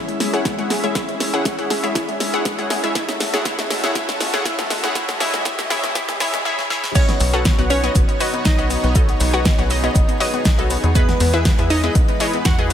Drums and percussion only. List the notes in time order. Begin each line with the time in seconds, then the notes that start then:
0.09 closed hi-hat
0.20 snare, open hi-hat
0.34 closed hi-hat
0.45 kick, snare, closed hi-hat
0.59 closed hi-hat
0.70 snare, open hi-hat
0.84 closed hi-hat
0.95 kick, snare, closed hi-hat
1.09 closed hi-hat
1.20 snare, open hi-hat
1.34 closed hi-hat
1.45 kick, snare, closed hi-hat
1.59 closed hi-hat
1.70 snare, open hi-hat
1.84 closed hi-hat
1.95 kick, snare, closed hi-hat
2.09 closed hi-hat
2.20 snare, open hi-hat
2.34 closed hi-hat
2.45 kick, snare, closed hi-hat
2.59 closed hi-hat
2.70 snare, open hi-hat
2.84 closed hi-hat
2.95 kick, snare, closed hi-hat
3.09 snare, closed hi-hat
3.20 snare, open hi-hat
3.34 snare, closed hi-hat
3.45 kick, snare, closed hi-hat
3.59 snare, closed hi-hat
3.70 snare, open hi-hat
3.84 snare, closed hi-hat
3.95 kick, snare, closed hi-hat
4.09 snare, closed hi-hat
4.20 snare, open hi-hat
4.34 snare, closed hi-hat
4.45 kick, snare, closed hi-hat
4.59 snare, closed hi-hat
4.70 snare, open hi-hat
4.84 snare, closed hi-hat
4.95 kick, snare, closed hi-hat
5.09 snare, closed hi-hat
5.20 snare, open hi-hat
5.34 snare, closed hi-hat
5.45 kick, snare, closed hi-hat
5.59 snare, closed hi-hat
5.70 snare, open hi-hat
5.84 snare, closed hi-hat
5.95 kick, snare, closed hi-hat
6.09 snare, closed hi-hat
6.20 snare, open hi-hat
6.34 snare, closed hi-hat
6.59 snare
6.70 snare
6.84 snare
6.95 kick, closed hi-hat, crash, shaker
7.09 snare, closed hi-hat
7.20 open hi-hat, shaker
7.34 snare, closed hi-hat
7.45 kick, snare, closed hi-hat, shaker
7.59 closed hi-hat
7.70 snare, open hi-hat, shaker
7.84 closed hi-hat
7.95 kick, closed hi-hat, shaker
8.09 closed hi-hat
8.20 open hi-hat, shaker
8.34 closed hi-hat
8.45 kick, snare, closed hi-hat, shaker
8.59 closed hi-hat
8.70 open hi-hat, shaker
8.84 snare, closed hi-hat
8.95 kick, closed hi-hat, shaker
9.09 closed hi-hat
9.20 open hi-hat, shaker
9.34 snare, closed hi-hat
9.45 kick, snare, closed hi-hat, shaker
9.59 snare, closed hi-hat
9.70 open hi-hat, shaker
9.84 closed hi-hat
9.95 kick, closed hi-hat, shaker
10.09 closed hi-hat
10.20 open hi-hat
10.34 closed hi-hat
10.45 kick, snare, closed hi-hat, shaker
10.59 closed hi-hat
10.70 open hi-hat, shaker
10.84 closed hi-hat
10.95 kick, closed hi-hat, shaker
11.09 snare, closed hi-hat
11.20 open hi-hat, shaker
11.34 snare, closed hi-hat
11.45 kick, snare, closed hi-hat, shaker
11.59 closed hi-hat
11.70 snare, open hi-hat, shaker
11.84 closed hi-hat
11.95 kick, closed hi-hat, shaker
12.08 closed hi-hat
12.20 open hi-hat, shaker
12.34 closed hi-hat
12.45 kick, snare, closed hi-hat, shaker
12.59 closed hi-hat